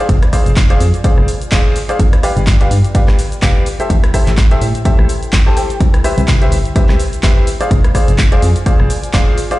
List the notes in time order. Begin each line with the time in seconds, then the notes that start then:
Already playing: F4 C5
0.00 G#4 C5 D5 F5
0.09 F1, kick, closed hi-hat, shaker
0.16 D5
0.23 cross-stick, closed hi-hat
0.33 G#4 C5 D5 F5, kick, cross-stick, open hi-hat, shaker
0.46 F1, closed hi-hat, shaker
0.57 kick, clap, closed hi-hat, shaker
0.64 G#5
0.70 G#4 C5 D5 F5, closed hi-hat
0.80 F2, open hi-hat, shaker
0.94 closed hi-hat, shaker
1.04 G#4 C5 D5 F5, kick, closed hi-hat, shaker
1.18 F1, cross-stick
1.28 open hi-hat, shaker
1.42 closed hi-hat, shaker
1.52 D1 G#4 C5 D5 F5, kick, clap, closed hi-hat, shaker
1.76 open hi-hat, shaker
1.89 G#4 C5 D5 F5, closed hi-hat, shaker
1.99 G1, kick, closed hi-hat, shaker
2.13 B4, cross-stick, closed hi-hat
2.18 G5
2.23 G4 B4 D5 F5, cross-stick, open hi-hat, shaker
2.37 G1, closed hi-hat, shaker
2.47 kick, clap, closed hi-hat, shaker
2.61 G4 B4 D5 F5, closed hi-hat
2.71 G2, open hi-hat, shaker
2.85 closed hi-hat, shaker
2.95 G4 B4 D5 F5, kick, closed hi-hat, shaker
3.08 G1, cross-stick, clap
3.19 open hi-hat, shaker
3.32 closed hi-hat, shaker
3.42 F1 G4 B4 D5 F5, kick, clap, closed hi-hat, shaker
3.66 E4, open hi-hat, shaker
3.80 G4 A4 C5 E5, closed hi-hat, shaker
3.90 A1 A4, kick, closed hi-hat, shaker
4.04 cross-stick, closed hi-hat
4.14 G4 A4 C5 E5, kick, cross-stick, open hi-hat, shaker
4.27 A1, clap, closed hi-hat, shaker
4.38 kick, clap, closed hi-hat, shaker
4.51 G4 A4 C5 E5, closed hi-hat
4.62 A2, open hi-hat, shaker
4.75 closed hi-hat, shaker
4.85 G4 A4 C5 E5, kick, closed hi-hat, shaker
4.99 A1, cross-stick
5.09 open hi-hat, shaker
5.23 closed hi-hat, shaker
5.33 G1, kick, clap, closed hi-hat, shaker
5.46 G4 A4 C5 A5
5.57 G4 A4 C5 G5, open hi-hat, shaker
5.70 closed hi-hat, shaker
5.80 C2, kick, closed hi-hat, shaker
5.94 cross-stick, closed hi-hat
6.04 G4 B4 C5 E5, cross-stick, open hi-hat, shaker
6.18 C2, closed hi-hat, shaker
6.28 kick, clap, closed hi-hat, shaker
6.42 G4 B4 C5 E5, closed hi-hat
6.52 G1, open hi-hat, shaker
6.65 closed hi-hat, shaker
6.76 G4 B4 C5 E5, kick, closed hi-hat, shaker
6.89 C2, cross-stick, clap
7.00 open hi-hat, shaker
7.13 closed hi-hat, shaker
7.23 G1 G4 B4 C5 E5, kick, clap, closed hi-hat, shaker
7.47 F4, open hi-hat, shaker
7.61 G#4 C5 D5 F5, closed hi-hat, shaker
7.68 F1 G#5, kick, closed hi-hat, shaker
7.84 cross-stick, closed hi-hat
7.94 G#4 C5 D5 F5, kick, cross-stick, open hi-hat, shaker
8.08 F1, closed hi-hat, shaker
8.18 kick, clap, closed hi-hat, shaker
8.32 G#4 C5 D5 F5, closed hi-hat
8.42 F2, open hi-hat, shaker
8.56 closed hi-hat, shaker
8.66 G#4 C5 D5 F5, kick, closed hi-hat, shaker
8.80 F1, cross-stick
8.90 open hi-hat, shaker
9.04 closed hi-hat, shaker
9.14 D1 G#4 C5 D5 F5, kick, clap, closed hi-hat, shaker
9.38 open hi-hat, shaker
9.51 G#4 C5 D5 F5, closed hi-hat, shaker